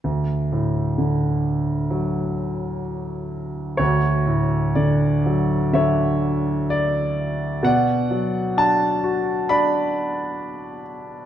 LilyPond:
<<
  \new Staff \with { instrumentName = "Grand piano" } { \time 4/4 \key d \major \tempo 4 = 64 << { r1 | cis''4 d''4 e''4 d''4 | fis''4 a''4 b''4. r8 | } \\ { r1 | fis'2 cis''2 | d''2 d''2 | } >> }
  \new Staff \with { instrumentName = "Grand piano" } { \clef bass \time 4/4 \key d \major d,8 a,8 d4 fis2 | d,8 a,8 d8 fis8 d2 | b,8 fis8 d'8 fis'8 d'2 | }
>>